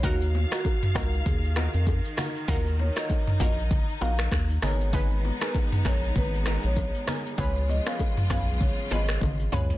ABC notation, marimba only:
X:1
M:4/4
L:1/16
Q:"Swing 16ths" 1/4=98
K:Ebm
V:1 name="Marimba"
G2 z G z2 B z A z2 B z4 | B z d z3 e z3 f z3 d z | c2 z c z2 d z c z2 d z4 | d z e z3 f z d z e z3 d z |]